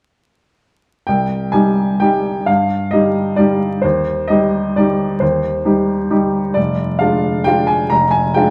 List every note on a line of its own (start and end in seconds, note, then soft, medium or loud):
1.07 1.53 C2 soft
1.07 1.53 G5 soft
1.52 1.98 G3 soft
1.52 1.98 D#4 soft
1.52 1.98 G4 soft
1.52 2.01 G#5 medium
2.00 2.43 G3 soft
2.00 2.43 D#4 soft
2.00 2.44 G4 soft
2.00 2.47 G5 medium
2.46 2.91 G2 soft
2.46 2.91 F5 medium
2.91 3.34 G3 soft
2.91 3.35 D#4 soft
2.91 3.35 G4 soft
2.91 3.37 D#5 soft
3.36 3.80 G3 soft
3.36 3.80 D#4 soft
3.36 3.80 G4 soft
3.36 3.83 D5 soft
3.82 4.28 D#2 soft
3.82 4.28 C5 soft
4.28 4.73 G3 soft
4.28 4.73 D#4 soft
4.28 4.73 G4 soft
4.28 4.76 D#5 medium
4.76 5.18 G3 soft
4.76 5.18 D#4 soft
4.76 5.18 G4 soft
4.76 5.21 D5 medium
5.20 5.64 D#2 soft
5.20 6.34 C5 soft
5.65 6.07 G3 soft
5.65 6.07 D#4 soft
5.65 6.08 G4 soft
6.10 6.52 G3 soft
6.10 6.52 D#4 soft
6.10 6.52 G4 soft
6.54 7.00 F1 soft
6.54 7.00 D5 soft
6.99 7.43 G#3 soft
6.99 7.44 D4 soft
6.99 7.44 F4 soft
6.99 7.46 F5 medium
7.44 7.87 G#3 soft
7.44 7.87 D4 soft
7.44 7.87 F4 soft
7.44 7.68 G5 medium
7.67 7.90 G#5 medium
7.90 8.33 F1 soft
7.90 8.12 A#5 medium
8.11 8.34 G#5 medium
8.34 8.50 G#3 soft
8.34 8.50 D4 soft
8.34 8.50 F4 soft
8.34 8.50 G5 medium